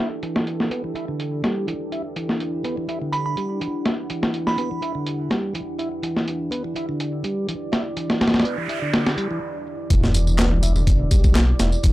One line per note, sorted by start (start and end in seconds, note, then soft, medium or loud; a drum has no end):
0.00 9.86 E3 medium
0.00 9.86 D4 medium
0.00 9.86 G4 medium
0.00 2.15 A4 medium
0.23 0.70 E3 medium
0.23 closed hi-hat medium
0.36 snare medium
0.47 closed hi-hat medium
0.60 snare soft
0.71 0.83 B3 medium
0.71 closed hi-hat medium
0.84 0.94 E3 medium
0.95 1.05 E4 medium
0.95 closed hi-hat medium
1.08 1.42 D3 medium
1.20 closed hi-hat medium
1.44 1.67 G3 medium
1.44 snare soft
1.44 closed hi-hat medium
1.68 1.74 E3 medium
1.68 closed hi-hat medium
1.92 2.02 E4 medium
1.92 closed hi-hat medium
2.16 2.63 E3 medium
2.16 6.02 F#5 medium
2.16 closed hi-hat medium
2.29 snare soft
2.40 closed hi-hat medium
2.64 2.76 B3 medium
2.64 closed hi-hat medium
2.77 2.87 E3 medium
2.89 2.99 E4 medium
2.89 closed hi-hat medium
3.02 3.36 D3 medium
3.13 3.21 B5 medium
3.13 closed hi-hat medium
3.26 3.33 B5 medium
3.37 3.60 G3 medium
3.37 closed hi-hat medium
3.61 3.67 E3 medium
3.61 closed hi-hat medium
3.85 3.96 E4 medium
3.85 snare medium
3.85 closed hi-hat medium
4.10 4.57 E3 medium
4.10 closed hi-hat medium
4.23 snare medium
4.34 closed hi-hat medium
4.47 4.82 B5 medium
4.47 snare soft
4.58 4.70 B3 medium
4.58 closed hi-hat medium
4.71 4.81 E3 medium
4.82 4.92 E4 medium
4.82 closed hi-hat medium
4.95 5.29 D3 medium
5.06 closed hi-hat medium
5.31 5.54 G3 medium
5.31 snare soft
5.31 closed hi-hat medium
5.55 5.61 E3 medium
5.55 closed hi-hat medium
5.79 5.89 E4 medium
5.79 closed hi-hat medium
6.03 6.50 E3 medium
6.03 9.88 D5 medium
6.03 closed hi-hat medium
6.17 snare soft
6.28 closed hi-hat medium
6.51 6.63 B3 medium
6.51 closed hi-hat medium
6.64 6.75 E3 medium
6.76 6.86 E4 medium
6.76 closed hi-hat medium
6.89 7.23 D3 medium
7.00 closed hi-hat medium
7.24 7.47 G3 medium
7.24 closed hi-hat medium
7.49 7.55 E3 medium
7.49 closed hi-hat medium
7.72 7.83 E4 medium
7.72 snare medium
7.72 closed hi-hat medium
7.96 8.44 E3 medium
7.96 closed hi-hat medium
7.96 noise sweep medium
8.10 snare medium
8.21 snare medium
8.21 closed hi-hat medium
8.28 snare medium
8.28 closed hi-hat medium
8.34 snare medium
8.34 closed hi-hat medium
8.40 snare medium
8.40 closed hi-hat medium
8.45 8.57 B3 medium
8.45 closed hi-hat medium
8.58 8.68 E3 medium
8.69 8.79 E4 medium
8.69 closed hi-hat medium
8.82 9.16 D3 medium
8.94 snare medium
8.94 closed hi-hat medium
9.06 snare medium
9.06 closed hi-hat medium
9.18 9.28 G3 medium
9.18 closed hi-hat medium
9.31 9.40 E3 medium
9.90 11.04 E1 loud
9.90 10.38 E3 medium
9.90 11.93 E4 medium
9.90 11.93 G4 medium
9.90 11.93 D5 loud
9.90 kick loud
9.90 closed hi-hat medium
9.90 tambourine soft
9.90 sub drop medium
10.04 snare soft
10.14 closed hi-hat medium
10.14 tambourine medium
10.27 tambourine soft
10.27 high conga medium
10.38 10.50 B3 medium
10.38 snare loud
10.38 clap loud
10.38 closed hi-hat medium
10.38 tambourine soft
10.51 10.62 E3 medium
10.51 low conga medium
10.63 10.73 E4 medium
10.63 closed hi-hat medium
10.63 tambourine medium
10.63 high conga medium
10.76 11.10 D3 medium
10.76 tambourine soft
10.76 low conga medium
10.87 kick loud
10.87 closed hi-hat medium
10.87 tambourine soft
11.11 11.53 B1 medium
11.11 11.34 G3 medium
11.11 kick loud
11.11 closed hi-hat medium
11.11 tambourine medium
11.24 kick medium
11.24 tambourine soft
11.35 11.42 E3 medium
11.35 snare loud
11.35 clap loud
11.35 closed hi-hat medium
11.35 tambourine soft
11.59 11.75 E1 loud
11.59 11.70 E4 medium
11.59 snare medium
11.59 closed hi-hat medium
11.59 tambourine medium
11.72 tambourine soft
11.83 11.93 E1 loud
11.83 11.93 E3 medium
11.83 kick loud
11.83 closed hi-hat medium
11.83 tambourine soft